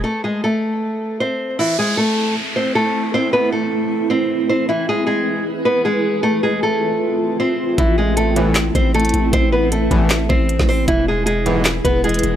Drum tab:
HH |--------------------------------|--------------------------------|--------------------------------|--------------------------------|
CP |--------------------------------|--------------------------------|--------------------------------|--------------------------------|
SD |--------------------------------|--------------------------------|--------------------------------|--------------------------------|
BD |--------------------------------|--------------------------------|--------------------------------|--------------------------------|

HH |--------------------------------|x-------x---x---x---x---xxxxx---|x-------x---x---x-------x---o---|x-------x---x---x---x---xxxxx---|
CP |--------------------------------|----------------x---------------|----------------x---------------|----------------x---------------|
SD |--------------------------------|----------------o---------------|----------------o---------o-----|----------------o---------------|
BD |--------------------------------|o-------------------o-----------|o-----------o-------o-----o-----|o-------------------o-----------|